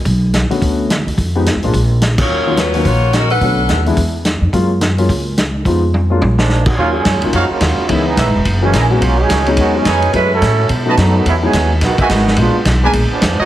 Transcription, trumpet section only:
X:1
M:4/4
L:1/8
Q:"Swing" 1/4=214
K:Blyd
V:1 name="Trumpet section"
z8 | z8 | z8 | z8 |
z8 | z8 | [K:Ebm] [EGdf] z3 [EGdf] z3 | z2 [Ecd_f] z3 [_FBea] z |
z6 [^D=B^c^g]2 | z4 z [^F=B^d=a] z2 | z4 z [^F^d=e^g] z2 | z3 [=DBca] z3 [EG_de] |]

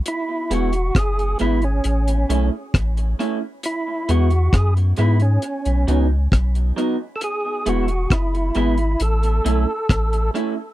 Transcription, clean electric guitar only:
X:1
M:4/4
L:1/8
Q:1/4=67
K:E
V:1 name="Clean electric guitar"
z [G,B,E] z [G,B,E] z [A,CE] z [A,CE] | z [G,B,E] z [G,B,E] z [F,B,D] z [F,B,D] | z [G,B,E] z [G,B,E] z [A,CE] z [A,CE] |]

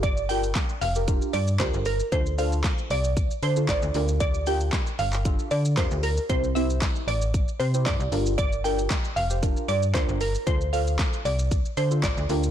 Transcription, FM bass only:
X:1
M:4/4
L:1/16
Q:1/4=115
K:Dm
V:1 name="FM bass" clef=bass
G,,,6 F,,,4 G,,2 D,, G,,,3 | D,,6 C,,4 D,2 A,,, D,, D,,2- | D,,6 G,,,4 D,2 F,, D,,3 | C,,6 A,,,4 C,2 G,, C,, G,,,2- |
G,,,6 F,,,4 G,,2 D,, G,,,3 | D,,6 C,,4 D,2 A,,, D,, D,,2 |]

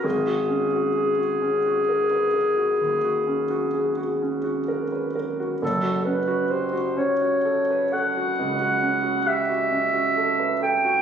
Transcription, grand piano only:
X:1
M:12/8
L:1/16
Q:3/8=43
K:G#dor
V:1 name="Grand piano"
G,,, F C F G F C F A B A F D,, F C F G F C F A B A F | [K:F#phr] F,,, F C F G F C F A B A F C,, F C F G F C F A B A F |]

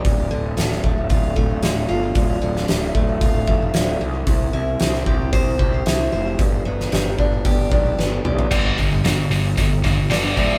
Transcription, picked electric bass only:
X:1
M:4/4
L:1/8
Q:1/4=113
K:Gmix
V:1 name="Picked electric bass" clef=bass
D,,, D,,, D,,, D,,, D,,, D,,, D,,, G,,, | D,,, D,,, D,,, D,,, D,,, F,,, D,,, C,, | C,, C,, C,, C,, C,, C,, C,, F,,, | G,,, G,,, G,,, G,,, G,,, B,,, G,,, B,,, |
G,,, G,,, G,,, G,,, G,,, G,,, G,,, D,,, |]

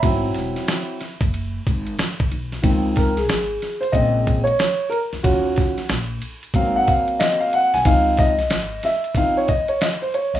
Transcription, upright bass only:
X:1
M:4/4
L:1/16
Q:"Swing 16ths" 1/4=92
K:Abmix
V:1 name="Upright bass" clef=bass
A,,,2 =E,,, z4 G,,,3 A,,,2 z2 =B,,,2 | D,,4 A,,,2 z2 B,,,4 z3 D,, | E,,4 B,,,2 z2 A,,,2 z4 z C,, | D,,4 A,,,2 z8 z C,, |]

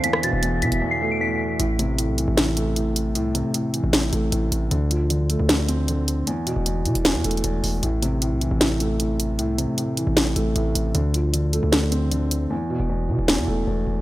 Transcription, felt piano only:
X:1
M:4/4
L:1/8
Q:1/4=154
K:Am
V:1 name="Felt piano" clef=bass
E,, B,, E,, E, E,, A, E,,2 | A,, C, A,, E, A,, A, A,,2 | A,, C, A,, E, A,, A, A,,2 | D, F, D, A, D, C D,2 |
E,, B,, E,, E, E,, A, E,,2 | A,, C, A,, E, A,, A, A,,2 | A,, C, A,, E, A,, A, A,,2 | D, F, D, A, D, C D,2 |
E,, B,, E,, E, E,, A, E,,2 |]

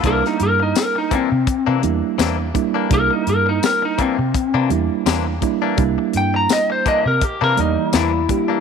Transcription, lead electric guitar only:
X:1
M:4/4
L:1/16
Q:"Swing 16ths" 1/4=84
K:Cmix
V:1 name="Lead electric guitar"
B _E B E B E C4 z6 | B _E B E B E C4 z6 | z2 g b _e c e B G B _E2 =E4 |]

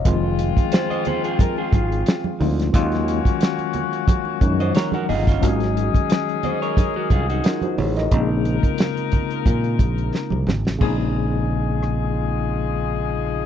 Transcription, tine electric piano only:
X:1
M:4/4
L:1/16
Q:"Swing 16ths" 1/4=89
K:Bbm
V:1 name="Tine electric piano"
z16 | z12 b g e2 | z12 [FB] [Gc] [Ad] [Be]- | [Be] z12 z3 |
z16 |]
V:2 name="Tine electric piano" clef=bass
[E,F,A,CF]12- [E,F,A,CF]2 [F,A,CEF]2 | [E,G,A,DF]8- [E,G,A,DF]2 [E,F,G,A,DE]6 | [E,G,A,CDG]16 | [D,A,B,CE]16 |
[D,A,B,CE]16 |]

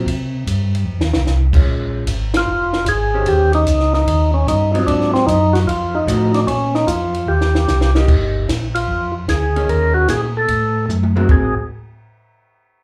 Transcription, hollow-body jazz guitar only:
X:1
M:4/4
L:1/8
Q:"Swing" 1/4=150
K:Ebdor
V:1 name="Hollow-body jazz guitar"
z6 z [A,DF]- | [A,DF]2 z4 z [E,D=Gc]- | [E,D=Gc]2 z4 z [_G,CF]- | [G,CF]2 z4 [F,=A,EG]2 |
z6 z [B,E=G]- | [B,E=G]2 z4 z [E,B,DA]- | [E,B,DA]2 z4 z [A,CGB] | [A,CGB] z6 z |]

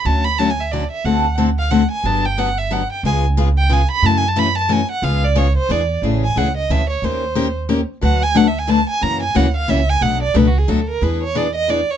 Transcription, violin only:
X:1
M:3/4
L:1/16
Q:"Swing" 1/4=180
K:Dlyd
V:1 name="Violin"
a2 b2 (3a2 g2 e2 d2 e2 | f4 z2 ^e2 f2 g2 | a2 =g2 f2 e2 f2 g2 | g2 z4 =g2 ^g2 b2 |
(3a2 g2 a2 b2 a2 g2 f2 | ^e2 d2 c2 ^B2 d3 z | [K:A] z2 g2 f2 ^d2 e2 c2 | =c6 z6 |
f2 g2 (3f2 e2 g2 a2 g2 | ^a2 g2 f2 =f2 e2 g2 | f2 d2 (3B2 F2 G2 A2 _B2 | B2 c2 d2 ^d2 =d2 c2 |]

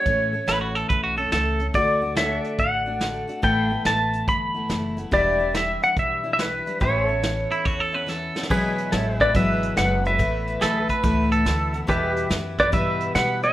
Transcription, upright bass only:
X:1
M:4/4
L:1/8
Q:"Swing" 1/4=142
K:Amix
V:1 name="Upright bass" clef=bass
A,,2 A,,,2 B,,,2 C,,2 | D,,4 A,,,4 | A,,,2 A,,,2 G,,,2 F,,,2 | E,,,4 B,,,4 |
A,,,4 E,,4 | B,,,2 A,,,2 ^G,,,2 F,,,2 | A,,,2 B,,, z C,,2 D,,2 | E,,2 F,,2 G,,2 B,,2 |]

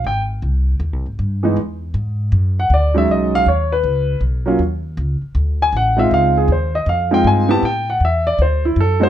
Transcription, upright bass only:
X:1
M:4/4
L:1/8
Q:"Swing" 1/4=158
K:Dblyd
V:1 name="Upright bass" clef=bass
A,,,2 C,,2 (3E,, C,, A,,, G,,2 | =E,,2 ^G,,2 _G,,2 =D,,2 | =B,,,2 ^D,,2 _D,,2 B,,,2 | E,,2 D,, z =D,,2 =A,,,2 |
D,,2 E,,2 F,,2 G,,2 | =A,,2 =E,,2 =D,,2 ^F,,2 |]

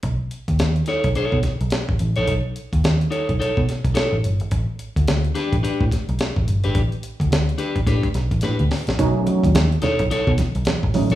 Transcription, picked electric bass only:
X:1
M:4/4
L:1/16
Q:"Swing 16ths" 1/4=107
K:Bmix
V:1 name="Picked electric bass" clef=bass
B,,, z2 D,, D,,2 z B,,, z B,, z B,,, z A,,, A,,, ^A,,, | B,,, z2 D,, D,,2 z B,,, z B,, z B,,, z A,,, =G,,, ^G,,, | A,,, z2 =D,, D,,2 z A,,, z A,, z B,,, z A,,, =G,,, ^G,,, | A,,, z2 =D,, D,,2 z A,,, A,, z B,,, A,,, A,, D,, z ^A,,, |
B,,, z2 D,, D,,2 z B,,, z B,, z B,,, z A,,, A,,, ^A,,, |]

